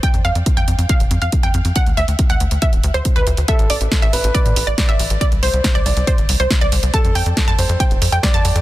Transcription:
<<
  \new Staff \with { instrumentName = "Synth pluck" } { \time 4/4 \key f \lydian \tempo 4 = 139 g''16 r16 f''8 r16 g''8 r16 f''8 r16 f''16 r16 g''8 r16 | fis''16 r16 e''8 r16 fis''8 r16 e''8 r16 c''16 r16 b'8 r16 | e''16 r16 d''8 r16 e''8 r16 d''8 r16 d''16 r16 e''8 r16 | d''16 r16 c''8 r16 d''8 r16 c''8 r16 c''16 r16 d''8 r16 |
a''16 r16 g''8 r16 a''8 r16 g''8 r16 g''16 r16 a''8 r16 | }
  \new Staff \with { instrumentName = "Grand piano" } { \time 4/4 \key f \lydian r1 | r1 | a'4. b'4. d''4~ | d''8 c''4 d''2~ d''8 |
a'4. c''4. d''4 | }
  \new Staff \with { instrumentName = "Analog synth bass" } { \clef bass \time 4/4 \key f \lydian r16 f,16 f,16 f,16 r16 f,16 f,16 f,16 r16 f,,16 f,16 f,16 r16 f,16 f,16 f,16 | r16 d,16 d,16 d,16 r16 d,16 d,16 d,16 r16 d,,16 d,16 d,16 r16 d,16 d,16 d,16 | r16 a,,16 a,,16 a,,16 r16 a,,16 a,,16 a,,16 r16 a,16 a,,16 a,,16 r16 a,,16 a,,16 a,,16 | r16 c,16 c,16 c,16 r16 c,16 c,16 c,16 r16 g,,16 c,16 c,16 r16 c,16 c,16 c,16 |
r16 f,16 f,16 f,16 r16 f,16 f,16 f,16 r16 f,,16 f,16 f,16 r16 f,16 f,16 f,16 | }
  \new DrumStaff \with { instrumentName = "Drums" } \drummode { \time 4/4 <hh bd>16 hh16 hh16 hh16 <hh bd>16 hh16 hh16 hh16 <hh bd>16 hh16 hh16 hh16 <hh bd>16 hh16 hh16 hh16 | <hh bd>16 hh16 hh16 hh16 <hh bd>16 hh16 hh16 hh16 <hh bd>16 hh16 hh16 hh16 <hh bd>16 hh16 hh16 hh16 | <hh bd>16 hh16 hho16 hh16 <hh bd sn>16 hh16 hho16 hh16 <hh bd>16 hh16 hho16 hh16 <hh bd sn>16 hh16 hho16 hh16 | <hh bd>16 hh16 hho16 hh16 <hh bd sn>16 hh16 hho16 hh16 <hh bd>16 hh16 hho16 hh16 <hh bd sn>16 hh16 hho16 hh16 |
<hh bd>16 hh16 hho16 hh16 <hh bd sn>16 hh16 hho16 hh16 <hh bd>16 hh16 hho16 hh16 <hh bd sn>16 hh16 hho16 hh16 | }
>>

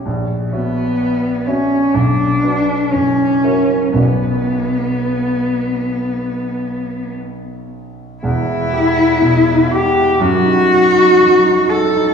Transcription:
<<
  \new Staff \with { instrumentName = "Grand piano" } { \time 4/4 \key b \minor \tempo 4 = 60 ais,,8 <fis' cis'' e''>4 <fis' cis'' e''>8 b,,8 <fis' b' d''>8 fis,,8 <fis' ais' e''>8 | <b,, fis' b' d''>1 | \key e \minor <e,, e,>16 e'16 g'16 e'16 b,16 e'16 g'16 e'16 fis,16 dis'16 fis'16 dis'16 fis16 dis'16 fis'16 dis'16 | }
  \new Staff \with { instrumentName = "Cello" } { \time 4/4 \key b \minor r8 b4 cis'8 d'4 cis'4 | b2. r4 | \key e \minor e'4. g'8 fis'4. a'8 | }
>>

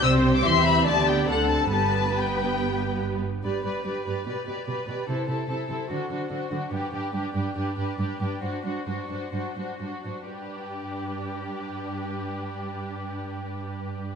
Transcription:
<<
  \new Staff \with { instrumentName = "Violin section" } { \time 4/4 \key g \major \tempo 4 = 139 e'''8. d'''16 c'''8 b''8 a''8 g''8 fis''8 a''8 | a''4 g''2 r4 | d''8 d''8 d''8 d''8 d''8 d''8 d''8 d''8 | c''8 c''8 c''8 c''8 c''8 c''8 c''8 c''8 |
b'8 b'8 b'8 b'8 b'8 b'8 b'8 b'8 | c''8 c''8 c''8 c''8 c''8 c''8 c''8 c''8 | b'1~ | b'1 | }
  \new Staff \with { instrumentName = "Violin section" } { \time 4/4 \key g \major c''4 e''4 d''4 a'4 | b'2.~ b'8 r8 | b'8 b'8 b'8 b'8 b'8 b'8 b'8 b'8 | a'8 a'8 a'8 a'8 fis'8 fis'8 fis'8 fis'8 |
g'8 g'8 g'8 g'8 g'8 g'8 g'8 g'8 | fis'8 fis'8 fis'8 fis'8 fis'8 fis'8 fis'8 fis'8 | g'1~ | g'1 | }
  \new Staff \with { instrumentName = "Viola section" } { \time 4/4 \key g \major <c' g'>4 <c' g'>4 <b g'>4 <c' a'>4 | <b g'>4 <b g'>2~ <b g'>8 r8 | g'8 g'8 g'8 g'8 g'8 g'8 g'8 g'8 | e'8 e'8 e'8 e'8 d'8 d'8 d'8 d'8 |
d'8 d'8 d'8 d'8 d'8 d'8 d'8 d'8 | d'8 d'8 d'8 d'8 d'8 d'8 d'8 d'8 | d'1~ | d'1 | }
  \new Staff \with { instrumentName = "Cello section" } { \clef bass \time 4/4 \key g \major c4 e4 d4 d4 | g,2.~ g,8 r8 | g,8 g,8 g,8 g,8 b,8 b,8 b,8 b,8 | c8 c8 c8 c8 d8 d8 d8 d8 |
g,8 g,8 g,8 g,8 g,8 g,8 g,8 g,8 | g,8 g,8 g,8 g,8 g,8 g,8 g,8 g,8 | g,1~ | g,1 | }
  \new Staff \with { instrumentName = "Double bass section" } { \clef bass \time 4/4 \key g \major c,4 e,4 d,4 d,4 | g,,2.~ g,,8 r8 | r1 | r1 |
r1 | r1 | r1 | r1 | }
>>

